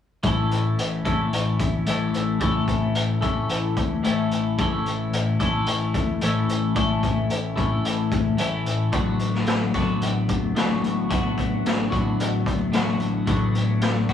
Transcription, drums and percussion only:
0.23 kick loud
0.23 closed hi-hat medium
0.51 closed hi-hat medium
0.79 closed hi-hat medium
1.05 kick medium
1.05 closed hi-hat medium
1.33 closed hi-hat medium
1.59 kick medium
1.59 closed hi-hat medium
1.86 closed hi-hat medium
2.14 closed hi-hat medium
2.40 kick loud
2.40 closed hi-hat medium
2.68 kick medium
2.68 closed hi-hat medium
2.95 closed hi-hat medium
3.22 kick medium
3.22 closed hi-hat soft
3.49 closed hi-hat medium
3.77 kick medium
3.77 closed hi-hat medium
4.04 closed hi-hat medium
4.31 closed hi-hat medium
4.58 kick medium
4.58 closed hi-hat medium
4.86 closed hi-hat medium
5.13 closed hi-hat medium
5.40 kick medium
5.40 closed hi-hat medium
5.66 closed hi-hat medium
5.94 kick medium
5.94 closed hi-hat medium
6.21 closed hi-hat medium
6.49 closed hi-hat medium
6.76 kick loud
6.76 closed hi-hat medium
7.03 kick medium
7.03 closed hi-hat medium
7.30 closed hi-hat medium
7.57 kick medium
7.57 closed hi-hat medium
7.85 closed hi-hat medium
8.12 kick medium
8.12 closed hi-hat medium
8.38 closed hi-hat medium
8.66 closed hi-hat medium
8.92 kick loud
8.92 closed hi-hat medium
9.19 closed hi-hat medium
9.34 snare soft
9.46 snare loud
9.46 closed hi-hat medium
9.74 kick medium
9.74 snare soft
9.74 closed hi-hat medium
10.02 closed hi-hat medium
10.29 kick medium
10.29 closed hi-hat medium
10.56 snare loud
10.56 closed hi-hat medium
10.84 closed hi-hat medium
11.11 kick loud
11.11 closed hi-hat medium
11.38 kick medium
11.38 closed hi-hat medium
11.66 snare loud
11.66 closed hi-hat medium
11.92 kick medium
11.92 closed hi-hat medium
12.20 closed hi-hat medium
12.46 kick medium
12.46 closed hi-hat medium
12.73 snare loud
12.73 closed hi-hat medium
13.00 closed hi-hat medium
13.27 kick loud
13.27 closed hi-hat medium
13.55 closed hi-hat medium
13.81 snare loud
13.81 closed hi-hat medium
14.09 kick medium
14.09 closed hi-hat medium

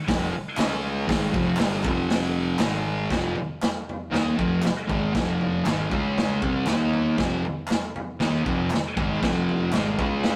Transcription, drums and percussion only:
0.08 kick loud
0.08 snare loud
0.08 open hi-hat medium
0.57 snare loud
0.57 clap medium
0.57 open hi-hat medium
1.09 kick loud
1.09 snare loud
1.09 open hi-hat medium
1.34 kick loud
1.56 snare loud
1.56 clap medium
1.56 open hi-hat medium
1.83 kick loud
1.83 clap medium
2.10 snare loud
2.10 open hi-hat medium
2.59 snare loud
2.59 clap medium
2.59 open hi-hat medium
3.11 kick medium
3.11 snare loud
3.11 floor tom medium
3.36 floor tom medium
3.62 snare loud
3.62 clap medium
3.62 floor tom medium
3.89 floor tom medium
4.14 snare loud
4.14 floor tom medium
4.39 kick medium
4.39 floor tom medium
4.62 snare loud
4.62 clap medium
4.62 floor tom medium
4.89 kick loud
4.89 floor tom medium
5.15 kick loud
5.15 snare loud
5.15 floor tom medium
5.41 floor tom medium
5.66 snare loud
5.66 clap loud
5.66 floor tom medium
5.91 kick loud
5.91 floor tom medium
6.18 snare loud
6.18 floor tom medium
6.42 kick loud
6.42 floor tom medium
6.66 snare loud
6.66 clap medium
6.66 floor tom medium
6.93 floor tom medium
7.18 kick medium
7.18 snare loud
7.18 floor tom medium
7.45 floor tom medium
7.67 snare loud
7.67 clap medium
7.67 floor tom medium
7.96 floor tom medium
8.20 snare loud
8.20 floor tom medium
8.46 kick loud
8.46 floor tom medium
8.70 clap medium
8.70 floor tom medium
8.74 snare medium
8.97 kick loud
8.97 floor tom medium
9.23 kick loud
9.23 snare loud
9.23 floor tom medium
9.49 floor tom medium
9.72 snare loud
9.72 clap medium
9.72 floor tom medium
9.99 kick loud
9.99 floor tom medium
10.24 snare loud
10.24 floor tom medium

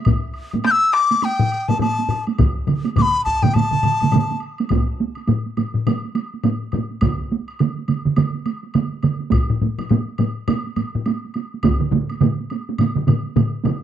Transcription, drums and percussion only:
0.05 taiko medium
0.05 taiko low-mid medium
0.05 taiko high medium
0.05 high woodblock soft
0.34 high woodblock soft
0.51 taiko low-mid medium
0.51 taiko high soft
0.51 high woodblock soft
0.64 taiko rim medium
0.64 taiko high medium
0.64 high woodblock soft
0.93 taiko rim medium
0.93 high woodblock soft
1.11 taiko high soft
1.11 high woodblock soft
1.22 taiko high medium
1.22 high woodblock medium
1.40 taiko low-mid medium
1.52 high woodblock soft
1.69 taiko low-mid medium
1.69 taiko high soft
1.69 high woodblock soft
1.80 taiko low-mid medium
1.80 taiko high medium
1.80 high woodblock soft
1.99 taiko high soft
2.09 taiko low-mid medium
2.09 high woodblock soft
2.27 taiko high soft
2.27 high woodblock soft
2.39 taiko medium
2.39 taiko low-mid medium
2.39 taiko mid medium
2.39 taiko high medium
2.39 high woodblock soft
2.67 taiko low-mid medium
2.67 taiko mid medium
2.67 high woodblock soft
2.85 taiko high soft
2.85 high woodblock soft
2.96 taiko medium
2.96 taiko low-mid medium
2.96 taiko mid medium
2.96 taiko high medium
2.96 high woodblock soft
3.25 taiko medium
3.25 high woodblock soft
3.42 taiko low-mid medium
3.42 taiko mid medium
3.42 taiko high soft
3.42 high woodblock soft
3.54 taiko low-mid medium
3.54 taiko mid medium
3.54 taiko high medium
3.54 high woodblock medium
3.71 taiko low-mid medium
3.71 taiko mid medium
3.83 taiko low-mid medium
3.83 taiko mid medium
3.83 high woodblock soft
4.00 taiko low-mid medium
4.00 taiko mid medium
4.00 taiko high soft
4.00 high woodblock soft
4.12 taiko low-mid medium
4.12 taiko mid loud
4.12 taiko high medium
4.12 high woodblock soft
4.31 taiko high soft
4.40 high woodblock soft
4.58 taiko high medium
4.58 high woodblock soft
4.69 taiko loud
4.69 taiko low-mid medium
4.69 taiko high medium
4.69 high woodblock soft
4.89 taiko high soft
5.00 taiko high medium
5.15 taiko high soft
5.15 high woodblock soft
5.27 taiko low-mid medium
5.27 taiko high medium
5.27 high woodblock soft
5.46 taiko high soft
5.57 taiko low-mid medium
5.57 taiko high medium
5.57 high woodblock soft
5.75 taiko low-mid medium
5.87 taiko low-mid loud
5.87 taiko high medium
5.87 high woodblock medium
6.04 taiko high soft
6.15 taiko high medium
6.15 high woodblock soft
6.34 taiko high soft
6.44 taiko low-mid medium
6.44 taiko high medium
6.44 high woodblock soft
6.63 taiko high soft
6.72 taiko low-mid medium
6.72 taiko high medium
6.72 high woodblock soft
6.91 taiko high soft
7.01 taiko loud
7.01 taiko mid loud
7.01 taiko high medium
7.01 high woodblock medium
7.20 taiko high soft
7.32 taiko high medium
7.48 high woodblock soft
7.59 taiko mid medium
7.59 taiko high medium
7.59 high woodblock soft
7.78 taiko high soft
7.88 taiko mid medium
7.88 taiko high medium
7.88 high woodblock soft
8.05 taiko mid medium
8.16 taiko mid loud
8.16 taiko high medium
8.16 high woodblock medium
8.34 taiko high soft
8.46 taiko high medium
8.46 high woodblock soft
8.64 taiko high soft
8.74 taiko mid loud
8.74 taiko high medium
8.74 high woodblock soft
8.93 taiko high soft
9.03 taiko mid medium
9.03 taiko high medium
9.03 high woodblock soft
9.20 taiko high soft
9.31 taiko medium
9.31 taiko low-mid medium
9.31 taiko high medium
9.31 high woodblock medium
9.50 taiko low-mid medium
9.50 taiko high soft
9.62 taiko low-mid medium
9.62 taiko high medium
9.78 taiko low-mid medium
9.78 taiko high soft
9.78 high woodblock soft
9.89 taiko low-mid medium
9.89 taiko high medium
9.89 high woodblock soft
10.08 taiko high soft
10.18 taiko low-mid medium
10.18 taiko high medium
10.18 high woodblock soft
10.48 taiko low-mid loud
10.48 taiko high medium
10.48 high woodblock medium
10.65 taiko high soft
10.76 taiko low-mid medium
10.76 taiko high soft
10.76 high woodblock soft
10.95 taiko low-mid medium
10.95 taiko high soft
11.06 taiko high medium
11.06 high woodblock soft
11.25 taiko high soft
11.34 taiko high medium
11.34 high woodblock soft
11.54 taiko high soft
11.63 taiko loud
11.63 taiko low-mid medium
11.63 taiko mid medium
11.63 taiko high medium
11.63 high woodblock medium
11.80 taiko low-mid medium
11.80 taiko mid medium
11.80 taiko high soft
11.91 taiko low-mid medium
11.91 taiko mid loud
11.91 taiko high medium
12.09 taiko high soft
12.09 high woodblock soft
12.21 taiko low-mid loud
12.21 taiko mid medium
12.21 taiko high medium
12.21 high woodblock soft
12.40 taiko high soft
12.50 taiko high medium
12.50 high woodblock soft
12.69 taiko high medium
12.78 taiko low-mid medium
12.78 taiko mid medium
12.78 taiko high medium
12.78 high woodblock medium
12.96 taiko low-mid medium
12.96 taiko mid medium
12.96 taiko high soft
13.07 taiko low-mid medium
13.07 taiko mid loud
13.07 taiko high medium
13.07 high woodblock soft
13.27 taiko high soft
13.36 taiko low-mid loud
13.36 taiko mid loud
13.36 taiko high medium
13.36 high woodblock soft
13.53 taiko high soft
13.64 taiko low-mid loud
13.64 taiko mid medium
13.64 taiko high medium
13.64 high woodblock soft

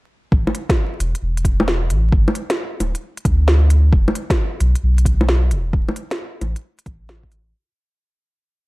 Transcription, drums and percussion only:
0.32 kick loud
0.47 low bongo medium
0.55 closed hi-hat medium
0.69 kick loud
0.69 snare loud
0.69 closed hi-hat soft
1.00 closed hi-hat medium
1.15 closed hi-hat soft
1.37 closed hi-hat soft
1.45 kick medium
1.45 closed hi-hat medium
1.60 low bongo medium
1.68 snare loud
1.90 closed hi-hat medium
2.12 kick loud
2.28 low bongo medium
2.35 closed hi-hat medium
2.50 snare loud
2.50 closed hi-hat soft
2.80 closed hi-hat medium
2.80 low bongo soft
2.95 closed hi-hat soft
3.17 closed hi-hat soft
3.25 kick loud
3.25 closed hi-hat medium
3.48 snare loud
3.70 closed hi-hat medium
3.93 kick loud
4.08 low bongo medium
4.15 closed hi-hat medium
4.30 kick loud
4.30 snare loud
4.30 closed hi-hat soft
4.60 closed hi-hat medium
4.75 closed hi-hat soft
4.98 closed hi-hat soft
5.05 kick medium
5.05 closed hi-hat medium
5.21 low bongo medium
5.29 snare loud
5.51 closed hi-hat medium
5.73 kick loud
5.89 low bongo medium
5.96 closed hi-hat medium
6.11 snare loud
6.11 closed hi-hat soft
6.41 closed hi-hat medium
6.41 low bongo soft
6.56 closed hi-hat soft
6.79 closed hi-hat soft
6.86 kick loud
6.86 closed hi-hat medium
7.09 snare loud
7.23 kick medium
7.32 closed hi-hat medium

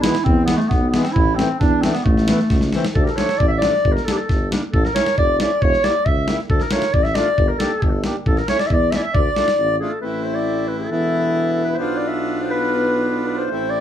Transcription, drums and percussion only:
0.04 snare loud
0.15 snare medium
0.26 kick medium
0.48 snare medium
0.60 snare soft
0.71 kick medium
0.71 snare soft
0.94 snare medium
1.05 snare medium
1.16 kick medium
1.39 snare medium
1.61 kick medium
1.61 snare soft
1.83 snare medium
1.95 snare medium
2.06 kick medium
2.17 snare soft
2.28 snare medium
2.39 snare soft
2.50 kick medium
2.50 snare medium
2.61 snare soft
2.73 snare medium
2.85 snare medium
2.95 kick medium
3.07 snare soft
3.18 snare medium
3.29 snare medium
3.40 kick medium
3.62 snare medium
3.74 snare soft
3.85 kick medium
3.97 snare soft
4.08 snare medium
4.29 kick medium
4.29 snare soft
4.52 snare medium
4.74 kick medium
4.85 snare soft
4.96 snare medium
5.06 snare medium
5.18 kick medium
5.40 snare medium
5.62 kick medium
5.73 snare soft
5.84 snare medium
6.06 kick medium
6.28 snare medium
6.39 snare soft
6.50 kick medium
6.60 snare soft
6.71 snare medium
6.82 snare medium
6.94 kick medium
7.05 snare soft
7.15 snare medium
7.38 kick medium
7.60 snare medium
7.82 kick medium
8.04 snare medium
8.26 kick medium
8.37 snare soft
8.48 snare medium
8.59 snare medium
8.70 kick medium
8.92 snare medium
9.15 kick medium
9.36 snare medium
9.48 snare medium

